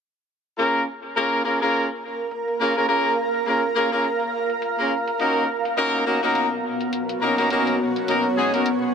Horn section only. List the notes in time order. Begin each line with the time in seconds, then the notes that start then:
0.58 A#3 C#4 F4 G#4 A#4
1.16 A#3 C#4 F4 G#4 A#4
1.45 A#3 C#4 F4 G#4 A#4
1.61 A#3 C#4 F4 G#4 A#4
2.60 A#3 C#4 F4 G#4 A#4
2.76 A#3 C#4 F4 G#4 A#4
2.89 A#3 C#4 F4 G#4 A#4
3.47 A#3 C#4 F4 G#4 A#4
3.76 A#3 C#4 F4 G#4 A#4
3.92 A#3 C#4 F4 G#4 A#4
4.79 A#3 C#4 F4 G#4 A#4
5.20 A#3 C#4 D#4 F#4 A#4
5.77 A#3 C#4 D#4 F#4 A#4
6.06 A#3 C#4 D#4 F#4 A#4
6.23 A#3 C#4 D#4 F#4 A#4
7.22 A#3 C#4 D#4 F#4 A#4
7.38 A#3 C#4 D#4 F#4 A#4
7.51 A#3 C#4 D#4 F#4 A#4
8.08 A#3 C#4 D#4 F#4 A#4
8.37 G#3 C#4 D#4 F#4 G#4
8.54 A#3 C#4 D#4 F#4 A#4